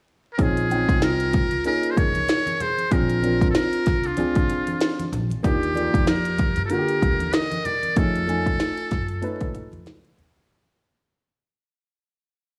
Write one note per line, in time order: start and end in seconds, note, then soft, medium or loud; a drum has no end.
0.34 0.63 C4 medium
0.34 0.44 A#4 medium
0.39 0.82 A#1 medium
0.39 0.63 C#4 medium
0.39 0.63 D#4 medium
0.39 1.02 F4 medium
0.39 0.64 G#4 medium
0.39 1.05 G#4 medium
0.39 kick loud
0.39 closed hi-hat medium
0.39 shaker medium
0.57 closed hi-hat soft
0.57 shaker soft
0.70 1.42 C4 medium
0.70 1.42 C#4 medium
0.70 1.42 D#4 medium
0.70 1.43 G5 medium
0.70 closed hi-hat medium
0.70 high conga soft
0.70 shaker soft
0.89 1.44 C2 medium
0.89 kick medium
0.89 closed hi-hat soft
0.89 high conga soft
0.89 shaker soft
1.02 1.65 F4 medium
1.02 1.66 A#4 medium
1.02 snare loud
1.02 closed hi-hat medium
1.02 shaker medium
1.20 closed hi-hat medium
1.20 shaker soft
1.33 kick medium
1.33 closed hi-hat medium
1.33 low conga medium
1.33 shaker soft
1.51 1.63 C#2 medium
1.51 closed hi-hat soft
1.51 shaker soft
1.64 2.59 A#3 medium
1.64 2.60 C#4 medium
1.64 2.60 D#4 medium
1.64 1.89 F4 medium
1.64 2.60 G#4 medium
1.64 1.93 A#4 loud
1.64 closed hi-hat medium
1.64 shaker medium
1.83 closed hi-hat soft
1.83 shaker soft
1.91 1.97 G#4 medium
1.91 1.99 C5 medium
1.97 2.25 C2 medium
1.97 2.60 A#4 medium
1.97 2.63 C#5 loud
1.97 kick medium
1.97 closed hi-hat medium
1.97 low conga medium
1.97 shaker soft
2.14 closed hi-hat soft
2.14 high conga medium
2.14 shaker soft
2.28 snare loud
2.28 closed hi-hat medium
2.28 shaker medium
2.46 closed hi-hat medium
2.46 high conga medium
2.46 shaker soft
2.60 2.92 G#4 medium
2.60 2.94 C5 medium
2.60 closed hi-hat medium
2.60 low conga medium
2.60 shaker soft
2.77 closed hi-hat soft
2.77 high conga soft
2.77 shaker soft
2.91 3.47 A#1 medium
2.91 3.16 C4 medium
2.91 3.16 D4 medium
2.91 3.47 F4 medium
2.91 3.17 F4 medium
2.91 3.17 G#4 medium
2.91 3.49 A#4 loud
2.91 kick loud
2.91 closed hi-hat medium
2.91 shaker medium
3.09 closed hi-hat soft
3.09 shaker soft
3.22 3.95 C4 medium
3.22 3.95 D4 medium
3.22 3.95 F4 medium
3.22 3.96 A#4 medium
3.22 closed hi-hat medium
3.22 high conga soft
3.22 shaker soft
3.41 kick medium
3.41 closed hi-hat soft
3.41 high conga soft
3.41 shaker soft
3.48 3.54 F4 medium
3.48 3.57 A4 medium
3.55 4.04 F4 medium
3.55 4.08 A#4 medium
3.55 snare loud
3.55 closed hi-hat medium
3.55 shaker medium
3.73 closed hi-hat medium
3.73 shaker soft
3.86 4.14 C2 medium
3.86 kick medium
3.86 snare soft
3.86 closed hi-hat medium
3.86 low conga medium
3.86 shaker soft
4.04 5.12 D4 medium
4.04 5.13 F4 medium
4.04 closed hi-hat soft
4.04 shaker soft
4.17 4.45 D2 medium
4.17 5.12 C4 medium
4.17 5.12 D4 medium
4.17 5.12 F4 medium
4.17 5.13 G#4 medium
4.17 closed hi-hat medium
4.17 shaker medium
4.35 kick medium
4.35 closed hi-hat soft
4.35 shaker soft
4.50 closed hi-hat medium
4.50 low conga medium
4.50 shaker soft
4.67 closed hi-hat soft
4.67 high conga medium
4.67 shaker soft
4.81 snare loud
4.81 closed hi-hat medium
4.81 shaker medium
4.99 closed hi-hat medium
4.99 high conga medium
4.99 shaker soft
5.12 5.28 A#1 medium
5.12 closed hi-hat medium
5.12 low conga medium
5.12 shaker soft
5.30 closed hi-hat soft
5.30 high conga soft
5.30 shaker soft
5.43 5.88 D#2 loud
5.43 5.68 A#3 medium
5.43 5.69 D4 medium
5.43 6.03 D#4 medium
5.43 5.69 F4 medium
5.43 6.10 G4 medium
5.43 5.69 G4 medium
5.43 kick loud
5.43 closed hi-hat medium
5.43 shaker medium
5.62 closed hi-hat soft
5.62 shaker soft
5.74 6.47 A#3 medium
5.74 6.48 F4 medium
5.74 5.83 G#4 medium
5.74 6.47 D5 medium
5.74 closed hi-hat medium
5.74 high conga soft
5.74 shaker soft
5.83 6.51 A#4 medium
5.94 6.49 F2 medium
5.94 kick medium
5.94 closed hi-hat medium
5.94 high conga soft
5.94 shaker soft
6.07 6.64 G4 medium
6.07 6.65 A#4 medium
6.07 snare loud
6.07 closed hi-hat medium
6.07 shaker medium
6.25 closed hi-hat medium
6.25 shaker soft
6.38 kick medium
6.38 closed hi-hat medium
6.38 low conga medium
6.38 shaker soft
6.56 6.68 G2 medium
6.56 closed hi-hat soft
6.56 shaker soft
6.64 6.70 F4 medium
6.64 6.72 A4 medium
6.69 7.65 D3 medium
6.69 7.64 A#3 medium
6.69 7.65 F4 medium
6.69 6.78 F#4 medium
6.69 7.33 G4 medium
6.69 7.35 A#4 medium
6.69 closed hi-hat medium
6.69 shaker medium
6.78 7.69 G4 medium
6.88 closed hi-hat soft
6.88 shaker soft
7.02 7.30 D#2 medium
7.02 kick medium
7.02 closed hi-hat medium
7.02 low conga medium
7.02 shaker soft
7.20 closed hi-hat soft
7.20 high conga medium
7.20 shaker soft
7.32 7.64 A#4 medium
7.32 7.67 D#5 loud
7.32 snare loud
7.32 closed hi-hat medium
7.32 shaker medium
7.52 closed hi-hat medium
7.52 high conga medium
7.52 shaker soft
7.65 7.96 A#4 medium
7.65 7.99 D5 loud
7.65 closed hi-hat medium
7.65 low conga medium
7.65 shaker soft
7.83 closed hi-hat soft
7.83 high conga soft
7.83 shaker soft
7.96 8.52 F2 loud
7.96 8.21 A3 medium
7.96 8.21 C#4 medium
7.96 8.22 D#4 medium
7.96 9.86 F4 medium
7.96 8.22 G#4 medium
7.96 9.87 A4 medium
7.96 kick loud
7.96 closed hi-hat medium
7.96 shaker medium
8.15 closed hi-hat soft
8.15 shaker soft
8.27 9.00 A3 medium
8.27 9.00 C#4 medium
8.27 9.00 D#4 medium
8.27 9.01 G#5 medium
8.27 closed hi-hat medium
8.27 high conga soft
8.27 shaker soft
8.46 kick medium
8.46 closed hi-hat medium
8.46 high conga soft
8.46 shaker soft
8.60 snare loud
8.60 closed hi-hat medium
8.60 shaker medium
8.77 closed hi-hat medium
8.77 shaker soft
8.91 9.19 F#2 medium
8.91 kick medium
8.91 snare soft
8.91 closed hi-hat medium
8.91 low conga medium
8.91 shaker soft
9.08 closed hi-hat soft
9.08 shaker soft
9.22 10.17 A3 medium
9.22 10.17 C#4 medium
9.22 10.17 D#4 medium
9.22 10.18 B4 medium
9.22 closed hi-hat medium
9.22 shaker medium
9.41 kick medium
9.41 closed hi-hat soft
9.41 shaker soft
9.54 9.70 G#2 medium
9.54 closed hi-hat medium
9.54 low conga medium
9.54 shaker medium
9.72 9.84 F2 medium
9.72 closed hi-hat soft
9.72 high conga medium
9.72 shaker soft
9.86 10.02 C#2 medium
9.86 snare loud
9.86 closed hi-hat medium
10.04 closed hi-hat medium
10.04 high conga medium
10.04 shaker soft
10.18 10.34 D#2 medium
10.18 closed hi-hat medium
10.18 low conga medium
10.18 shaker soft
10.35 10.47 E2 medium
10.35 closed hi-hat soft
10.35 high conga soft
10.35 shaker soft